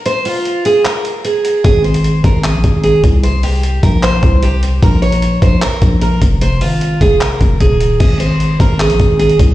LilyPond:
<<
  \new Staff \with { instrumentName = "Steel-string acoustic guitar" } { \time 4/4 \key aes \major \tempo 4 = 151 c''8 f'4 aes'8 bes'4 aes'4 | aes'8 c''4 bes'8 aes'4 aes'8 r8 | c''8 g'4 bes'8 c''4 g'8 r8 | bes'8 des''4 c''8 bes'4 bes'8 r8 |
c''8 f'4 aes'8 bes'4 aes'4 | aes'8 c''4 bes'8 aes'4 aes'8 r8 | }
  \new Staff \with { instrumentName = "808-style bass" } { \clef bass \time 4/4 \key aes \major r1 | aes,,4. aes,,8. bes,,16 aes,,4 c,8~ | c,4. bes,,4 c,4. | bes,,4. bes,,8 r8 bes,,4 f,,8~ |
f,,8 aes,,4 f,,8 r8 f,,8 ees,,4 | aes,,4. aes,,8. bes,,16 aes,,4 c,8 | }
  \new DrumStaff \with { instrumentName = "Drums" } \drummode { \time 4/4 hh8 hho8 hh8 hh8 <hc hh>8 hh8 hh8 hh8 | <hh bd>8 hh16 hh16 hh8 <hh bd>8 <hc hh>8 <hh bd>8 hh8 <hh bd>8 | hh8 hho8 hh8 <hh bd>8 <hc hh>8 <hh bd>8 hh8 hh8 | <hh bd>8 hh16 hh16 hh8 <hh bd>8 <hc hh>8 <hh bd>8 hh8 <hh bd>8 |
hh8 hho8 hh8 <hh bd>8 <hc hh>8 <hh bd>8 <hh bd>8 hh8 | <cymc hh bd>8 hh8 hh8 <hh bd>8 <hc hh>16 hh16 <hh bd>8 hh16 hh16 <hh bd>8 | }
>>